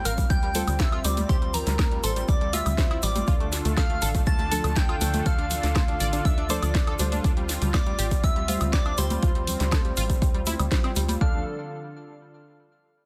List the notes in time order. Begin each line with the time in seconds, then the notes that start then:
Already playing: G3 C4 F4 C5
0.05 A1 A#4 F5 F6, open hi-hat, shaker
0.18 G3, kick, closed hi-hat, high bongo, shaker
0.30 D2 G3 G5 G6, kick, closed hi-hat, shaker
0.43 G3, closed hi-hat
0.55 G3 F4 A4 C5, open hi-hat, high bongo, high conga, shaker
0.67 D2 G3, closed hi-hat, high woodblock, shaker
0.79 G3 E5 E6, kick, snare, closed hi-hat, high bongo, shaker
0.92 F4, closed hi-hat, high woodblock
1.04 D2 G3 F4 C5 D5 D6, open hi-hat, high bongo, shaker
1.17 G3, closed hi-hat, high conga, shaker
1.29 D2 G4 C5 C6, kick, closed hi-hat, shaker
1.42 G3, closed hi-hat, high bongo
1.54 A#4 A#5, open hi-hat, low conga, shaker
1.67 D2 G3, snare, closed hi-hat, high bongo, shaker
1.79 A#4, kick, snare, closed hi-hat, high conga, high woodblock, shaker
1.91 G3, closed hi-hat, high bongo
2.03 A1 A4 C5 C6, open hi-hat, shaker
2.16 G3, closed hi-hat, shaker
2.28 D2 G3 D5 D6, kick, closed hi-hat, high bongo, shaker
2.41 G3, closed hi-hat
2.53 F4 E5 E6, open hi-hat, high bongo, high conga, shaker
2.66 D2 G3, closed hi-hat, high woodblock, shaker
2.78 G3 F4 C5, kick, snare, closed hi-hat, shaker
2.91 E4, closed hi-hat, high woodblock
3.03 A1 G3 D5 D6, open hi-hat, shaker
3.15 G3, closed hi-hat, high bongo, high conga, shaker
3.27 D2 D3 D4 F4 A4, kick, closed hi-hat, shaker
3.40 A3, closed hi-hat
3.52 snare, open hi-hat, high bongo, shaker
3.65 D2 A3, closed hi-hat, shaker
3.77 A4 F5 F6, kick, snare, closed hi-hat, high bongo, high conga, high woodblock, shaker
3.90 A3, closed hi-hat
4.02 A1 A4, open hi-hat, shaker
4.14 A3, kick, closed hi-hat, high bongo, shaker
4.26 D2 A3 A5 A6, kick, closed hi-hat, shaker
4.39 A3, closed hi-hat, high bongo
4.51 F3 D4 A4, open hi-hat, high conga, shaker
4.64 D2 A3, closed hi-hat, high bongo, high woodblock, shaker
4.76 A3 G5 G6, kick, snare, closed hi-hat, shaker
4.89 F4, closed hi-hat, high woodblock
5.01 D2 F3 A3 D4 A4, open hi-hat, high bongo, shaker
5.13 A3, closed hi-hat, high conga, shaker
5.26 D2 A4 F5 F6, kick, closed hi-hat, high bongo, shaker
5.38 D4, closed hi-hat
5.50 open hi-hat, high bongo, low conga, shaker
5.63 D2 D4, snare, closed hi-hat, shaker
5.75 C5, kick, snare, closed hi-hat, high conga, high woodblock, shaker
5.88 D4, closed hi-hat, high bongo
6.00 A1 D5, open hi-hat, shaker
6.13 D4, closed hi-hat, high bongo, shaker
6.25 D2 D4 E5 E6, kick, closed hi-hat, shaker
6.37 D4, closed hi-hat, high bongo
6.49 F3 D4 A4 C5 D5 D6, open hi-hat, high conga, shaker
6.63 D2 D4, closed hi-hat, high woodblock, shaker
6.75 D4, kick, snare, closed hi-hat, high bongo, shaker
6.87 A4, closed hi-hat, high woodblock
6.99 D2 G3 D4 F4 C5, open hi-hat, high bongo, shaker
7.12 D4, closed hi-hat, high conga, shaker
7.24 D2 G3 C4 D4, kick, closed hi-hat, shaker
7.37 G3, closed hi-hat
7.49 snare, open hi-hat, shaker
7.62 D2 G3, closed hi-hat, high bongo, shaker
7.74 F4 D5 D6, kick, snare, closed hi-hat, high conga, high woodblock, shaker
7.86 G3, closed hi-hat, high bongo
7.99 A1 G4, open hi-hat, shaker
8.11 G3, kick, closed hi-hat, high bongo, shaker
8.24 D2 G3 E5 E6, kick, closed hi-hat, shaker
8.36 G3, closed hi-hat
8.48 G3 F4 C5, open hi-hat, high bongo, high conga, shaker
8.61 D2 G3, closed hi-hat, high woodblock, shaker
8.73 G3 D5 D6, kick, snare, closed hi-hat, high bongo, shaker
8.86 D4, closed hi-hat, high woodblock
8.98 D2 G3 F4 C5 C6, open hi-hat, high bongo, shaker
9.10 G3, closed hi-hat, high conga, shaker
9.23 D2 F4, kick, closed hi-hat, shaker
9.35 G3, closed hi-hat, high bongo
9.47 open hi-hat, low conga, shaker
9.60 D2 G3, snare, closed hi-hat, high bongo, shaker
9.72 A4, kick, snare, closed hi-hat, high conga, high woodblock, shaker
9.85 G3, closed hi-hat, high bongo
9.97 A1 F4, open hi-hat, shaker
10.10 G3, kick, closed hi-hat, shaker
10.22 D2 G3, kick, closed hi-hat, high bongo, shaker
10.35 G3, closed hi-hat
10.46 E4, open hi-hat, high bongo, high conga, shaker
10.59 D2 G3, closed hi-hat, high woodblock, shaker
10.71 G3 F4 C5, kick, snare, closed hi-hat, high bongo, shaker
10.84 C4, closed hi-hat, high woodblock
10.96 D2 G3, open hi-hat, shaker
11.08 G3, closed hi-hat, high bongo, high conga, shaker
11.21 D2 D3 F3 D4 F4 A4 F5 F6, kick